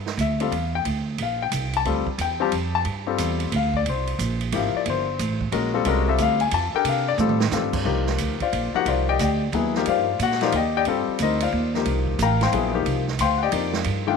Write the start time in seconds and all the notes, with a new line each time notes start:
Already playing: G2
0.06 snare
0.17 D2 E5, hi-hat pedal, ride
0.40 G3 C4 F4 A4 F5, ride
0.52 E2, ride
0.75 G5
0.85 D2, ride
1.18 A#1, ride
1.22 F5
1.43 G5
1.52 C2, hi-hat pedal, ride
1.73 A5, ride
1.85 D2 G3 C4 F4 A4, ride
2.07 muted upright bass stroke, kick
2.18 E2 G5, hi-hat pedal, ride
2.40 G3 C4 F4 G4 A5
2.52 F2, ride
2.75 A5
2.85 G2, ride
3.07 G3 C4 F4 A4
3.18 E2, hi-hat pedal, ride
3.40 ride
3.52 D2, ride
3.56 F5
3.74 D5, kick
3.86 C2 C5, ride
4.07 ride
4.19 A#1, hi-hat pedal, ride
4.41 ride
4.52 G#1 F3 A#3 E4 G4 F5, ride
4.74 D5, muted upright bass stroke
4.86 G1, ride
4.90 C5
5.19 A1, hi-hat pedal, ride
5.41 kick
5.52 A#1 G#3 C#4 F#4 A#4, ride
5.74 G3 C4 F4 A4
5.85 C2 G#3 C#4 F#4 A#4, ride
6.08 G3 C4 F4 A4 E5
6.18 D2 F5, hi-hat pedal, ride
6.40 G#5, ride
6.51 F2 A5, ride
6.74 D4 G4 A4 A#4 G5, muted upright bass stroke
6.84 C3, ride
6.89 F5
7.08 D5
7.18 A2 G3 C4 F4 A4, hi-hat pedal, mid tom
7.29 mid tom
7.40 snare
7.51 G2 G3 C4 F4 A4, snare, hi-hat pedal
7.73 kick, crash
7.85 C2 F3 A#3 D#4 G4
8.07 snare
8.18 D2, hi-hat pedal, ride
8.40 F4 C5 D5 F5, muted upright bass stroke, kick, ride
8.52 A#1, ride
8.74 F3 A#3 D#4 F#4 G4 F#5, muted upright bass stroke
8.85 C2 F4 C5 D5 F5, ride
9.09 G4 D5 D#5 G5
9.19 D2 G4 D5 D#5 G5, hi-hat pedal, ride
9.52 D#2 F#3 B3 E4 G#4, ride
9.75 F3 A#3 D#4 G4, snare
9.86 G2 F3 A#3 D#4 F4 G4 C5 D5 F5, ride
10.19 A#2 F#4 F#5, hi-hat pedal, ride
10.31 snare
10.41 F3 A#3 D#4 F4 G4 C5 D5 F5, snare, ride
10.52 D#2 G4 G5, ride
10.56 D5 D#5
10.77 G4 D5 D#5 G5
10.85 G2 G3 C4 F4 A4, ride
11.08 muted upright bass stroke
11.19 D2 A#4 D#5, hi-hat pedal, ride
11.23 D#4 C5
11.40 F4 C5 D5 F5, ride
11.52 D#2
11.74 F3 A#3 D#4 G4, snare
11.85 C2, ride
12.07 kick
12.19 A1 A#4 F5 G5 A#5, hi-hat pedal, ride
12.41 C5 F5 G5 C6, snare, ride
12.52 A#1 F#3 B3 E4 G#4, ride
12.74 F3 A#3 D#4 G4
12.86 C2, ride
13.08 snare
13.19 D2 C5 F5 G5 C6, hi-hat pedal, ride
13.38 F#5
13.43 G4 D5 D#5 G5
13.51 F2 F3 A#3 D#4, ride
13.73 snare
13.84 G2, ride
14.07 D#3 A3 D4 F4 G5